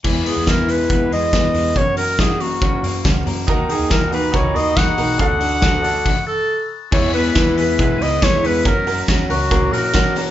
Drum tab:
CC |x-------|--------|--------|----x---|
RD |--------|--------|--------|--------|
HH |-oxoxoxo|xoxo-oxo|xoxoxoxo|xoxo----|
SD |--o---o-|--o---o-|--o---o-|--o-----|
BD |o-o-o-o-|o-o-o-o-|o-o-o-o-|o-o-o---|

CC |x-------|--------|
RD |--x-x-x-|x-x-x-x-|
HH |-opopopo|popopopo|
SD |--o---o-|--o---o-|
BD |o-o-o-o-|o-o-o-o-|